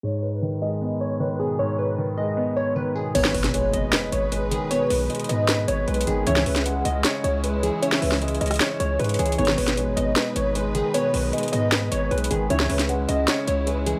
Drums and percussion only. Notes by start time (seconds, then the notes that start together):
3.15 closed hi-hat, crash
3.25 snare
3.34 closed hi-hat, open hi-hat
3.44 snare, closed hi-hat
3.54 closed hi-hat
3.74 closed hi-hat
3.93 snare, closed hi-hat
4.12 closed hi-hat
4.32 closed hi-hat
4.51 closed hi-hat
4.71 closed hi-hat
4.90 open hi-hat
5.10 closed hi-hat
5.15 closed hi-hat
5.20 closed hi-hat
5.24 closed hi-hat
5.29 closed hi-hat
5.49 snare, closed hi-hat
5.68 closed hi-hat
5.88 closed hi-hat
5.94 closed hi-hat
6.01 closed hi-hat
6.07 closed hi-hat
6.27 closed hi-hat
6.36 snare
6.46 closed hi-hat, open hi-hat
6.56 snare, closed hi-hat
6.66 closed hi-hat
6.85 closed hi-hat
7.04 snare, closed hi-hat
7.24 closed hi-hat
7.44 closed hi-hat
7.63 closed hi-hat
7.83 closed hi-hat
7.92 snare
8.02 open hi-hat
8.12 snare
8.22 closed hi-hat
8.28 closed hi-hat
8.35 closed hi-hat
8.41 closed hi-hat
8.46 closed hi-hat
8.48 cross-stick, closed hi-hat
8.51 closed hi-hat
8.54 closed hi-hat
8.56 closed hi-hat
8.60 snare, closed hi-hat
8.80 closed hi-hat
9.00 closed hi-hat
9.04 closed hi-hat
9.09 closed hi-hat
9.14 closed hi-hat
9.19 closed hi-hat
9.26 closed hi-hat
9.32 closed hi-hat
9.39 closed hi-hat
9.45 snare, closed hi-hat
9.52 closed hi-hat
9.58 closed hi-hat, open hi-hat
9.68 snare, closed hi-hat
9.77 closed hi-hat
9.97 closed hi-hat
10.16 snare, closed hi-hat
10.36 closed hi-hat
10.55 closed hi-hat
10.75 closed hi-hat
10.94 closed hi-hat
11.14 open hi-hat
11.33 closed hi-hat
11.38 closed hi-hat
11.43 closed hi-hat
11.48 closed hi-hat
11.53 closed hi-hat
11.72 snare, closed hi-hat
11.92 closed hi-hat
12.11 closed hi-hat
12.18 closed hi-hat
12.24 closed hi-hat
12.31 closed hi-hat
12.50 closed hi-hat
12.60 snare
12.70 closed hi-hat, open hi-hat
12.79 snare, closed hi-hat
12.89 closed hi-hat
13.09 closed hi-hat
13.28 snare, closed hi-hat
13.48 closed hi-hat
13.67 closed hi-hat
13.86 closed hi-hat